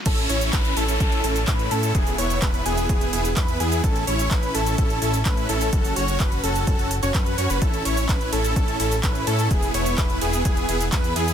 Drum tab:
CC |x---------------|----------------|----------------|----------------|
RD |----------------|----------------|----------------|----------------|
HH |xxoxxxoxxxoxxxox|xooxxxoxxxoxxxox|xxoxxxoxxxoxxxox|xooxxxoxxxoxxxox|
SH |xx-xxx-xxx-xxx-x|xx-xxx-xxx-xxx-x|xx-xxx-xxx-xxx-x|xx-xxx-xxx-xxx-x|
CP |----x-------x---|----x-------x---|----x-------x---|----x-------x---|
BD |o---o---o---o---|o---o---o---o---|o---o---o---o---|o---o---o---o---|

CC |----------------|----------------|
RD |--x---x---x---x-|--x---x---x---x-|
HH |xxoxxxoxxxoxxxox|xooxxxoxxxoxxxox|
SH |xx-xxx-xxx-xxx-x|xx-xxx-xxx-xxx-x|
CP |----x-------x---|----x-------x---|
BD |o---o---o---o---|o---o---o---o---|